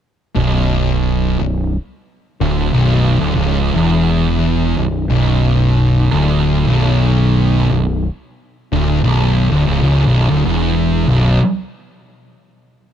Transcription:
0.35 picked electric bass B0, distorted electric guitar B1
1.39 picked electric bass B0, distorted electric guitar B1
2.40 picked electric bass D1, distorted electric guitar D2
2.72 picked electric bass B0, distorted electric guitar B1
3.20 picked electric bass D1, distorted electric guitar D2
3.35 picked electric bass C#1, distorted electric guitar C#2
3.73 picked electric bass E1, distorted electric guitar E2
4.77 picked electric bass B0, distorted electric guitar B1
5.08 picked electric bass B0, distorted electric guitar B1
6.12 picked electric bass D1, distorted electric guitar D2
6.66 picked electric bass B0, distorted electric guitar B1
7.69 picked electric bass B0, distorted electric guitar B1
8.72 picked electric bass D1, distorted electric guitar D2
9.03 picked electric bass B0, distorted electric guitar B1
9.50 picked electric bass D1, distorted electric guitar D2
9.66 picked electric bass C#1, distorted electric guitar C#2
9.82 picked electric bass C#1, distorted electric guitar C#2
10.06 picked electric bass B0, distorted electric guitar B1
10.30 picked electric bass D1, distorted electric guitar D2
10.45 picked electric bass E1, distorted electric guitar E2
11.08 picked electric bass B0, distorted electric guitar B1

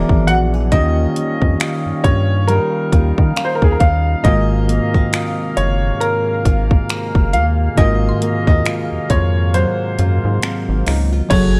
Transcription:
Already playing: brass ensemble E3 F#3 G#3 D4, nylon-string guitar E3, tine electric piano E3 B3 F#4 G#4 D5, grand piano A#4, synth pluck F5 G#5 A#5 D6
0.09 analog synth bass G#1, kick
0.27 analog synth bass A#1, nylon-string guitar F#4, grand piano F#5, closed hi-hat
0.54 nylon-string guitar G#4
0.70 analog synth bass D#2, tine electric piano D#3 A#3 F4 G4, brass ensemble D#3 G3 C#4 F5, nylon-string guitar D#3 F4, grand piano D#5, kick, closed hi-hat
0.75 tine electric piano C#4
1.16 nylon-string guitar C#4, closed hi-hat
1.42 analog synth bass F2, kick
1.60 nylon-string guitar F4, finger snap, closed hi-hat
1.86 analog synth bass G2
2.04 analog synth bass G2, nylon-string guitar C#4, grand piano C#5, kick, closed hi-hat
2.48 nylon-string guitar G3, brass ensemble D#4, grand piano A#4, closed hi-hat
2.92 analog synth bass D#2, nylon-string guitar F4, kick, closed hi-hat
3.18 analog synth bass D#3, kick
3.36 nylon-string guitar C#4, synth pluck F5, finger snap, closed hi-hat
3.45 grand piano C5
3.55 grand piano A#4
3.62 analog synth bass D#2, grand piano G#4, kick
3.72 grand piano A#4
3.80 analog synth bass D#2, nylon-string guitar F4, grand piano F5, kick, closed hi-hat
4.23 analog synth bass G#1, tine electric piano G#2 D#3 A#3 F4 F#4, nylon-string guitar G#2 F4, brass ensemble C3 G#3 A#3, grand piano D#5, kick, closed hi-hat
4.28 tine electric piano A#4
4.69 nylon-string guitar A#3, closed hi-hat
4.94 analog synth bass F#1, nylon-string guitar C4, kick
5.13 nylon-string guitar F4, finger snap, closed hi-hat
5.57 analog synth bass F#1, grand piano C#5, closed hi-hat
6.00 grand piano A#4, synth pluck A#5, closed hi-hat
6.45 analog synth bass G#1, nylon-string guitar F4, kick, closed hi-hat
6.71 kick
6.89 nylon-string guitar C4, finger snap, closed hi-hat
7.15 analog synth bass F#1, kick
7.33 analog synth bass D#2, nylon-string guitar F4, grand piano F5, closed hi-hat
7.76 analog synth bass G#1, tine electric piano G#2 D#3 A#3 F4 F#4, nylon-string guitar G#2 F4, grand piano D#5, synth pluck G#5, kick, closed hi-hat
7.81 tine electric piano A#4
8.09 synth pluck C6
8.22 nylon-string guitar A#3, closed hi-hat
8.47 analog synth bass D#2, nylon-string guitar C4, grand piano D#5, kick
8.65 nylon-string guitar F4, finger snap, closed hi-hat
8.92 analog synth bass F2
9.10 analog synth bass F2, grand piano C#5, synth pluck C6, kick, closed hi-hat
9.54 nylon-string guitar F#3, grand piano C5, closed hi-hat
9.99 analog synth bass F#2, nylon-string guitar F4, closed hi-hat
10.25 analog synth bass G#2
10.42 nylon-string guitar C4, finger snap, closed hi-hat
10.69 analog synth bass G#1
10.87 analog synth bass C#2, nylon-string guitar D#4, finger snap, open hi-hat
11.12 nylon-string guitar F4
11.29 analog synth bass F#1, brass ensemble C#3 A3 F#4 G#5, tine electric piano F#3 F#4 G#4 A4, nylon-string guitar F#3, grand piano C#5, kick, closed hi-hat, crash, impact
11.34 tine electric piano C#5

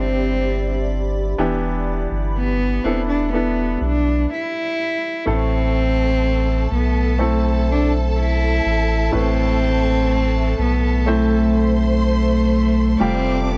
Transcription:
Already playing: sub bass G1, cello C4, grand piano C4 D4 E4 G4 A4, ambient pad G4 D5 E5 B5
1.38 sub bass E1, grand piano E3 B3 D4 E4 G4, ambient pad B5
2.11 sub bass G1
2.38 cello B3
2.84 sub bass E1, grand piano B3 D4 E4 A4, cello C4
3.08 cello D4
3.33 grand piano B3 D4 E4 A4, cello B3
3.81 sub bass B1
3.86 cello D4
4.33 cello E4
5.26 sub bass A1, grand piano A2 A3 E4 A4, violin section A4 A5, ambient pad A4 E5 A5
5.31 cello C4
6.71 sub bass B1, cello B3
7.18 grand piano A3 C4 E4 A4
7.23 cello A3
7.71 cello D4
8.19 cello E4
8.66 sub bass A1
9.12 sub bass A1, grand piano A2 A3 E4 B4
9.16 cello C4
10.59 sub bass B1, cello B3
11.06 grand piano A3 C4 E4 C5, cello A3
11.54 violin section C5 C6
12.07 cello A3
12.99 sub bass F1, grand piano C3 G3 F4 G4, cello C4, ambient pad G4 G5, violin section D5 D6
13.44 cello C4
13.51 cello B3

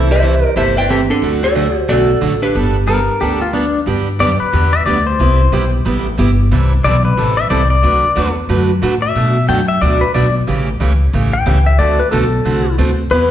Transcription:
Already playing: upright bass C2, steel-string acoustic guitar C3 E3 A3 E4 A4, hollow-body jazz guitar C5
0.11 hollow-body jazz guitar G4 E5, clarinet C5
0.22 steel-string acoustic guitar C3 E3 A3 E4 A4
0.56 upright bass G1, steel-string acoustic guitar C3 E3 A3 E4 A4, hollow-body jazz guitar G4 E5, clarinet C5
0.77 hollow-body jazz guitar B4 G5, clarinet D5
0.89 steel-string acoustic guitar C3 E3 A3 E4 A4, clarinet C4, hollow-body jazz guitar C4 G4
1.10 clarinet D4, hollow-body jazz guitar D4 A4
1.22 upright bass D2, steel-string acoustic guitar D3 F#3 A3 D4 F#4
1.43 hollow-body jazz guitar F#4 D5, clarinet A4
1.55 steel-string acoustic guitar D3 F#3 A3 D4 F#4
1.88 upright bass B1, steel-string acoustic guitar D3 F#3 A3 D4 F#4, hollow-body jazz guitar F#4 D5, clarinet A4
2.21 upright bass A1, steel-string acoustic guitar D3 F#3 A3 D4 F#4
2.42 hollow-body jazz guitar D4 B4, clarinet G4
2.54 upright bass G1, steel-string acoustic guitar G3 B3 D4 A4
2.87 steel-string acoustic guitar G3 B3 D4 A4, pedal steel guitar A#4
3.20 upright bass D2, steel-string acoustic guitar G3 B3 D4 A4, pedal steel guitar G4
3.42 pedal steel guitar F4
3.53 steel-string acoustic guitar G3 B3 D4 A4, pedal steel guitar D4
3.86 upright bass G2, steel-string acoustic guitar D3 G3 B3 D4 G4
4.19 upright bass F#2, steel-string acoustic guitar D3 G3 B3 D4 G4, pedal steel guitar D5
4.40 pedal steel guitar B4, muted upright bass stroke
4.52 upright bass E2, steel-string acoustic guitar D3 G3 B3 D4 G4
4.73 pedal steel guitar E5
4.86 upright bass D2, steel-string acoustic guitar D3 G3 B3 D4 G4, pedal steel guitar D5
5.07 pedal steel guitar C5
5.19 upright bass C2, steel-string acoustic guitar C3 G3 B3 E4 G4
5.52 upright bass B1, steel-string acoustic guitar C3 G3 B3 E4 G4
5.85 upright bass A1, steel-string acoustic guitar C3 G3 B3 E4 G4
6.18 upright bass G1, steel-string acoustic guitar C3 G3 B3 E4 G4
6.51 upright bass C2, steel-string acoustic guitar C3 E3 G3 C4 E4 A4
6.84 upright bass B1, steel-string acoustic guitar C3 E3 G3 C4 E4 A4, pedal steel guitar D5
7.05 pedal steel guitar B4
7.17 upright bass A1, steel-string acoustic guitar C3 E3 G3 C4 E4 A4
7.37 pedal steel guitar E5
7.50 upright bass C2, steel-string acoustic guitar C3 E3 G3 C4 E4 A4, pedal steel guitar D5
7.70 pedal steel guitar D5
7.83 upright bass D2, steel-string acoustic guitar D3 F#3 A3 D4 F#4 B4
8.04 muted upright bass stroke
8.15 upright bass E2, steel-string acoustic guitar D3 F#3 A3 D4 F#4 B4
8.49 upright bass F#2, steel-string acoustic guitar D3 F#3 A3 D4 F#4 B4
8.82 upright bass A2, steel-string acoustic guitar D3 F#3 A3 D4 F#4 B4
9.02 pedal steel guitar E5
9.15 steel-string acoustic guitar B2 F#3 A3 D4 F#4, upright bass B2
9.48 upright bass F#2, steel-string acoustic guitar B2 F#3 A3 D4 F#4, pedal steel guitar G5
9.68 pedal steel guitar E5
9.81 upright bass D2, steel-string acoustic guitar B2 F#3 A3 D4 F#4, pedal steel guitar D5
10.01 pedal steel guitar B4, muted upright bass stroke
10.14 upright bass B1, steel-string acoustic guitar B2 F#3 A3 D4 F#4, pedal steel guitar D5
10.47 upright bass A1, steel-string acoustic guitar C#3 E3 A3 C#4 G4
10.80 upright bass C#2, steel-string acoustic guitar C#3 E3 A3 C#4 G4
11.13 upright bass A1, steel-string acoustic guitar C#3 E3 A3 C#4 G4
11.33 pedal steel guitar G5
11.46 upright bass C#2, steel-string acoustic guitar C#3 E3 A3 C#4 G4
11.66 pedal steel guitar E5
11.78 upright bass D2, steel-string acoustic guitar D3 A3 C4 F#4 A4, pedal steel guitar D5
11.99 pedal steel guitar B4
12.11 upright bass B1, steel-string acoustic guitar D3 A3 C4 F#4 A4, pedal steel guitar A4
12.45 upright bass C2, steel-string acoustic guitar D3 A3 C4 F#4 A4
12.78 upright bass D2, steel-string acoustic guitar D3 A3 C4 F#4 A4
13.11 upright bass E2, steel-string acoustic guitar E3 B3 E4 G4, pedal steel guitar B4

